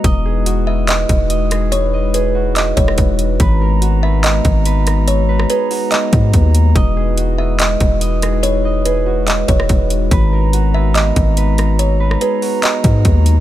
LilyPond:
<<
  \new Staff \with { instrumentName = "Kalimba" } { \time 4/4 \key e \lydian \tempo 4 = 143 r4. e''8 dis''4 r4 | cis''4 b'4 dis''8 cis''4. | r4. e''8 dis''4 r4 | cis''4 b'4 dis''2 |
r4. e''8 dis''4 r4 | cis''4 b'4 dis''8 cis''4. | r4. e''8 dis''4 r4 | cis''4 b'4 dis''2 | }
  \new Staff \with { instrumentName = "Harp" } { \time 4/4 \key e \lydian dis''8 gis'8 fis'8 dis''4. dis''8 gis'8~ | gis'8 dis''8 gis'8 fis'2~ fis'8 | b'8 ais'8 fis'8 b'4. b'8 ais''8~ | ais''8 b'8 gis'8 fis'2~ fis'8 |
dis''8 gis'8 fis'8 dis''4. dis''8 gis'8~ | gis'8 dis''8 gis'8 fis'2~ fis'8 | b'8 ais'8 fis'8 b'4. b'8 ais''8~ | ais''8 b'8 gis'8 fis'2~ fis'8 | }
  \new Staff \with { instrumentName = "Glass harmonica" } { \time 4/4 \key e \lydian << { <dis' e' b'>1~ | <dis' e' b'>1 | <b ais''>1~ | <b ais''>1 |
<dis' e' b'>1~ | <dis' e' b'>1 | <b ais''>1~ | <b ais''>1 | } \\ { fis'1~ | fis'1~ | fis'1~ | fis'1~ |
fis'1~ | fis'1 | fis'1~ | fis'1 | } >> }
  \new Staff \with { instrumentName = "Glass harmonica" } { \clef bass \time 4/4 \key e \lydian gis1~ | gis1 | gis1~ | gis1~ |
gis1~ | gis1 | gis1~ | gis1 | }
  \new Staff \with { instrumentName = "808-style bass" } { \clef bass \time 4/4 \key e \lydian e,,2~ e,,8 e,,4.~ | e,,2~ e,,8 e,,8 e,,4 | gis,,2~ gis,,8 gis,,4.~ | gis,,4 r4. gis,8 dis,4 |
e,,2~ e,,8 e,,4.~ | e,,2~ e,,8 e,,8 e,,4 | gis,,2~ gis,,8 gis,,4.~ | gis,,4 r4. gis,8 dis,4 | }
  \new DrumStaff \with { instrumentName = "Drums" } \drummode { \time 4/4 <hh bd>4 hh4 <hc hh>8 <hh bd>8 hh8 <hh ss>8 | hh4 hh4 <hc hh>8 <hh bd>16 ss16 <hh bd>8 hh8 | <hh bd>4 hh4 <hc hh>8 <hh bd>8 hh8 <hh ss>8 | hh8. ss16 hh8 hho8 <hc hh>8 <hh bd>8 <hh bd>8 hh8 |
<hh bd>4 hh4 <hc hh>8 <hh bd>8 hh8 <hh ss>8 | hh4 hh4 <hc hh>8 <hh bd>16 ss16 <hh bd>8 hh8 | <hh bd>4 hh4 <hc hh>8 <hh bd>8 hh8 <hh ss>8 | hh8. ss16 hh8 hho8 <hc hh>8 <hh bd>8 <hh bd>8 hh8 | }
>>